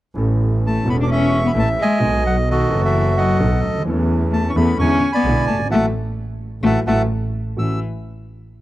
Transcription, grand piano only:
0.14 A1 A2 E3 B3 C#4 A4
0.83 E1 E2 E3 B3 C#4
0.88 A4
1.54 A1 A2 E3 B3 C#4 A4
1.99 B1 B2 F#3 B3 D#4 A4
2.68 F#1 F#2 F#3 B3 F#4 A4
3.39 B1 B2 F#3 B3 D#4 A4
3.70 C#2
3.74 D2
3.80 D#2
3.85 E2 E3 A3 C#4
3.90 A4
4.56 E2 E3 A3 C#4 A4
4.80 E2 D3 E3 G#3 B3 E4
5.26 B1 B2 D3 G#3 B3 E4
5.54 F#1
5.59 G1
5.65 G#1
5.70 E3 F#3 A3
6.64 E3 F#3 A3
6.86 E3 F#3 A3
7.57 A1 A3 C#4 F#4

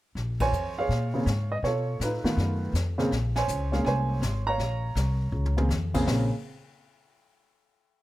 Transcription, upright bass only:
0.15 A#1
0.52 F2
0.89 A#2
1.26 G#2
1.62 B2
2.00 A2
2.24 muted upright bass stroke
2.37 F#2
2.73 F2
3.11 A#1
3.48 C#2
3.84 C2
4.21 G#1
4.58 A#1
4.95 C2
5.32 C#2
5.69 F2
6.06 A#1

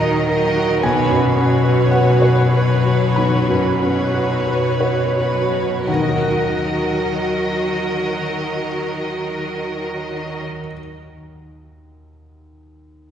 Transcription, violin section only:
Already playing: A#4 D#5
0.28 A#4 D#5
0.81 B4 C#5
1.36 B4 C#5
2.54 B4 C#5
3.81 B4 C#5
5.18 B4 C#5
5.87 A#4 D#5

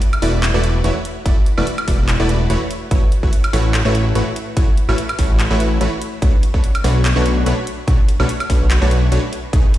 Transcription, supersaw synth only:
0.22 A3 E4 F#4 B4 D5
0.54 A3 E4 F#4 B4 D5
0.84 A3 E4 F#4 B4 C#5
1.26 A3 E4 F#4 B4 D5
1.58 A3 E4 F#4 B4 D5
1.88 A3 E4 F#4 B4 D5
2.20 A3 E4 F#4 B4 D5
2.50 A3 E4 F#4 B4 C#5
2.91 A3 E4 F#4 B4 C#5
3.23 A3 E4 F#4 B4 C#5
3.53 A3 E4 F#4 B4 C#5
3.85 A3 E4 F#4 B4 C#5
4.15 A3 E4 F#4 B4 C#5
4.57 A3 E4 F#4 B4 C#5
4.89 A3 E4 F#4 B4 C#5
5.19 A3 E4 F#4 B4 C#5
5.51 A3 E4 F#4 B4 C#5
5.81 A3 E4 F#4 B4 C#5
6.22 A3 D4 F#4 B4 C#5
6.54 A3 D4 F#4 B4 C#5
6.84 A3 D4 F#4 B4 C#5
7.16 A3 D4 F#4 B4 C#5
7.46 A3 D4 F#4 B4 C#5
7.88 A3 D4 F#4 B4 C#5
8.20 A3 D4 F#4 B4 C#5
8.50 A3 D4 F#4 B4 C#5
8.82 A3 D4 F#4 B4 C#5
9.12 A3 D4 F#4 B4 C#5
9.53 A3 D#4 G#4 B4 C#5

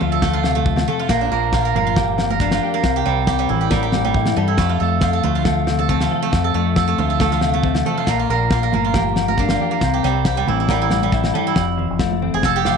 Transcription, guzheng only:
Already playing: A3 C4 A4
0.01 F4
0.12 A4
0.22 A3
0.33 F4
0.55 A3
0.88 A3
0.99 F4
1.09 A#3
1.21 D4
1.32 A#4
1.54 F4
1.65 A#4
1.76 A#3
1.87 F4
2.30 A#4
2.41 A#3
2.52 F4
2.74 A#3
2.96 G4
3.06 G3
3.27 G4
3.39 G3
3.49 E4
3.61 G4
3.71 G3
3.83 G4
4.04 G3
4.36 G3
4.48 E4
4.58 A3
4.69 F4
4.80 A4
5.02 F4
5.13 A4
5.23 A3
5.35 F4
5.79 A4
5.89 A3
6.01 F4
6.22 A3
6.44 A4
6.54 A3
6.76 A4
6.88 A3
6.98 F4
7.10 A4
7.21 A3
7.32 F4
7.54 A3
7.86 A3
7.97 F4
8.08 A#3
8.19 F4
8.30 A#4
8.52 F4
8.63 A#4
8.74 A#3
8.85 F4
9.28 A#4
9.39 A#3
9.50 F4
9.71 A#3
9.94 G4
10.04 G3
10.26 G4
10.37 G3
10.48 E4
10.60 E4
10.70 G3
10.82 E4
11.03 G3
11.35 G3
11.47 E4
12.34 G#4
12.45 A4
12.56 G4
12.66 F4

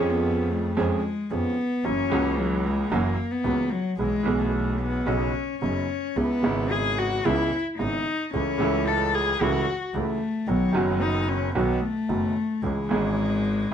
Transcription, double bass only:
Already playing: F2
0.77 F2
1.30 F2
1.85 F#1
2.11 C#2
2.90 F#1
3.45 C#2
3.98 B1
4.25 B1
5.06 B1
5.62 F#1
6.17 C#2
6.44 G#1
7.26 C#2
7.80 G#1
8.34 C#2
8.60 C#2
9.40 C#2
9.94 C#2
10.47 B1
10.74 F#1
11.55 B1
12.08 F#1
12.63 C#2
12.90 G#1

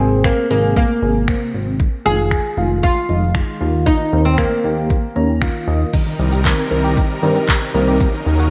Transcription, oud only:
Already playing: C4
0.25 A#3
0.51 A#3
0.77 A#3
2.06 G#4
2.83 F4
3.86 D#4
4.25 C4
4.38 A#3

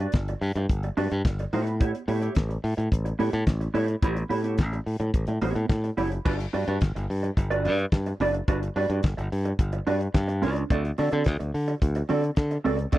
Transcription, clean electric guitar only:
0.01 D4 F#4 B4 D5
0.15 muted clean electric guitar stroke
0.29 muted clean electric guitar stroke
0.57 muted clean electric guitar stroke
0.84 muted clean electric guitar stroke
0.97 D4 F#4 B4 D5
1.11 muted clean electric guitar stroke
1.26 muted clean electric guitar stroke
1.40 muted clean electric guitar stroke
1.53 B3 E4 G4 C#5
1.67 muted clean electric guitar stroke
1.80 B3 E4 G4 C#5
1.94 muted clean electric guitar stroke
2.08 B3 E4 G4 C#5
2.22 B3 E4 G4 C#5
2.36 muted clean electric guitar stroke
2.49 muted clean electric guitar stroke
2.77 muted clean electric guitar stroke
3.05 muted clean electric guitar stroke
3.19 B3 E4 G4 C#5
3.33 muted clean electric guitar stroke
3.47 muted clean electric guitar stroke
3.60 muted clean electric guitar stroke
3.74 B3 E4 G4 C#5
3.88 muted clean electric guitar stroke
4.03 B3 E4 G4 C#5
4.16 muted clean electric guitar stroke
4.29 B3 E4 G4 C#5
4.44 B3 E4 G4 C#5
4.58 muted clean electric guitar stroke
4.73 muted clean electric guitar stroke
5.00 muted clean electric guitar stroke
5.28 muted clean electric guitar stroke
5.42 B3 E4 G4 C#5
5.56 muted clean electric guitar stroke
5.70 muted clean electric guitar stroke
5.84 muted clean electric guitar stroke
5.97 B3 E4 G4 C#5
6.12 muted clean electric guitar stroke
6.25 D4 F#4 B4 D5
6.39 muted clean electric guitar stroke
6.53 D4 F#4 B4 D5
6.68 D4 F#4 B4 D5
6.82 muted clean electric guitar stroke
6.95 muted clean electric guitar stroke
7.23 muted clean electric guitar stroke
7.37 muted clean electric guitar stroke
7.50 D4 F#4 B4 D5
7.65 D4 F#4 B4 D5
7.78 muted clean electric guitar stroke
7.93 muted clean electric guitar stroke
8.06 muted clean electric guitar stroke
8.21 D4 F#4 B4 D5
8.35 muted clean electric guitar stroke
8.48 D4 F#4 B4 D5
8.62 muted clean electric guitar stroke
8.76 D4 F#4 B4 D5
8.90 D4 F#4 B4 D5
9.03 muted clean electric guitar stroke
9.17 muted clean electric guitar stroke
9.45 muted clean electric guitar stroke
9.73 muted clean electric guitar stroke
9.87 D4 F#4 B4 D5
10.01 muted clean electric guitar stroke
10.14 muted clean electric guitar stroke
10.28 muted clean electric guitar stroke
10.42 D4 F#4 B4 D5
10.56 muted clean electric guitar stroke
10.70 C4 F#4 A4 D5
10.84 muted clean electric guitar stroke
10.98 C4 F#4 A4 D5
11.11 C4 F#4 A4 D5
11.26 muted clean electric guitar stroke
11.39 muted clean electric guitar stroke
11.68 muted clean electric guitar stroke
11.96 muted clean electric guitar stroke
12.09 C4 F#4 A4 D5
12.23 muted clean electric guitar stroke
12.37 muted clean electric guitar stroke
12.51 muted clean electric guitar stroke
12.64 C4 F#4 A4 D5
12.79 muted clean electric guitar stroke
12.92 C4 F#4 A4 D5

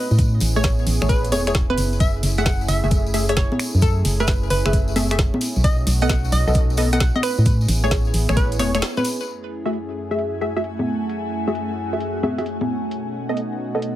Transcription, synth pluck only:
Already playing: B4
0.56 C#5
1.09 B4
1.32 C#5
1.47 C#5
1.70 B4
2.00 E5
2.38 F#5
2.46 F#5
2.68 E5
3.29 C#5
3.37 C#5
3.82 A4
4.20 B4
4.50 B4
4.66 B4
5.64 D#5
6.02 F#5
6.09 F#5
6.32 D#5
6.93 F#5
7.01 F#5
7.16 D#5
7.23 B4
7.84 C#5
8.37 B4
8.60 C#5
8.75 C#5
8.97 B4

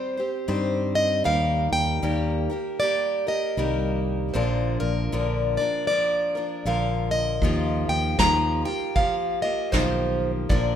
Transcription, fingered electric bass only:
0.48 G2
1.26 D#2
1.72 D#2
2.03 D#2
3.57 C2
4.35 A#1
4.81 A#1
5.13 A#1
6.65 A#1
7.42 D#2
7.89 D#2
8.19 D#2
9.73 B1
10.50 A#1

